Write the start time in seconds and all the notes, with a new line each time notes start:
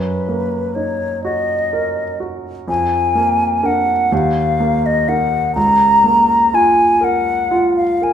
Already playing: F#2 B4
0.29 A#3
0.75 D#4 C#5
1.24 F#4 D#5
1.73 A#4
2.20 F#4
2.68 F2 G#5
3.15 A#3
3.63 D4 A#4 F#5
4.12 D#2 F5
4.60 A#3
4.86 D#5
5.08 D#4 A#4 F#5
5.55 C#2 A#5
6.04 A#3
6.54 F4 G#5
7.01 A#4 F#5
7.51 F4
7.77 F5
8.02 A#4 G#5